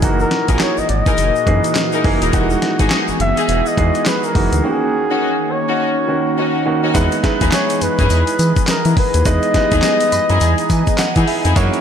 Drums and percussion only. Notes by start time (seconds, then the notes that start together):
0.02 kick, closed hi-hat, shaker
0.20 shaker
0.31 snare, closed hi-hat
0.48 kick, closed hi-hat, shaker
0.59 snare, clap, closed hi-hat, shaker
0.78 shaker
0.89 closed hi-hat
1.06 kick, closed hi-hat, shaker
1.18 closed hi-hat, shaker
1.36 shaker
1.47 kick, closed hi-hat
1.64 closed hi-hat, shaker
1.75 snare, clap, closed hi-hat, shaker
1.93 shaker
2.04 kick, open hi-hat
2.22 closed hi-hat, shaker
2.33 kick, closed hi-hat, shaker
2.50 shaker
2.62 snare, closed hi-hat
2.79 kick, closed hi-hat, shaker
2.90 snare, clap, closed hi-hat, shaker
3.08 shaker
3.20 closed hi-hat
3.37 closed hi-hat, shaker
3.48 closed hi-hat, shaker
3.66 shaker
3.78 kick, closed hi-hat
3.95 closed hi-hat, shaker
4.06 snare, clap, closed hi-hat, shaker
4.23 shaker
4.35 kick, open hi-hat
4.53 closed hi-hat, shaker
6.95 kick, closed hi-hat, tambourine, shaker
7.12 closed hi-hat, shaker
7.24 kick, snare, closed hi-hat, tambourine
7.41 kick, closed hi-hat, shaker
7.52 snare, clap, closed hi-hat, tambourine, shaker
7.70 closed hi-hat, shaker
7.81 closed hi-hat, tambourine, shaker
7.99 kick, closed hi-hat, shaker
8.10 closed hi-hat, tambourine, shaker
8.27 closed hi-hat, shaker
8.39 closed hi-hat, tambourine, shaker
8.56 kick, closed hi-hat, shaker
8.67 snare, clap, closed hi-hat, tambourine, shaker
8.85 closed hi-hat, shaker
8.97 kick, open hi-hat
9.14 closed hi-hat, shaker
9.25 kick, closed hi-hat, tambourine, shaker
9.42 closed hi-hat, shaker
9.54 kick, snare, closed hi-hat, tambourine
9.72 kick, closed hi-hat, shaker
9.82 snare, clap, closed hi-hat, tambourine, shaker
10.01 closed hi-hat, shaker
10.12 closed hi-hat, tambourine, shaker
10.30 closed hi-hat, shaker
10.40 closed hi-hat, tambourine, shaker
10.58 closed hi-hat, shaker
10.70 kick, closed hi-hat, tambourine, shaker
10.87 kick, closed hi-hat, shaker
10.98 snare, clap, closed hi-hat, tambourine, shaker
11.16 kick, closed hi-hat, shaker
11.28 open hi-hat
11.45 closed hi-hat, shaker
11.56 kick, closed hi-hat, tambourine, shaker
11.73 closed hi-hat, shaker